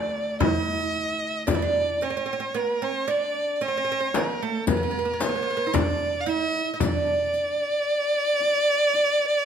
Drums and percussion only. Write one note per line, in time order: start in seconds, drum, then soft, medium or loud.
0.41 darbuka dum medium
0.41 frame drum medium
0.95 darbuka ka soft
1.48 riq medium
1.48 frame drum medium
1.48 darbuka dum medium
2.01 riq soft
2.54 riq soft
3.08 riq soft
3.08 darbuka ka soft
3.61 riq soft
3.61 darbuka ka soft
4.14 riq soft
4.14 darbuka tek medium
4.14 frame drum medium
4.67 riq medium
4.67 frame drum medium
4.67 darbuka dum medium
5.20 riq medium
5.20 darbuka tek medium
5.20 frame drum medium
5.74 riq soft
5.74 frame drum medium
5.74 darbuka dum medium
6.28 riq soft
6.80 riq soft
6.80 darbuka dum medium
6.80 frame drum medium
7.34 riq soft
8.40 riq soft
8.40 darbuka ka soft
8.94 riq soft
8.94 darbuka ka soft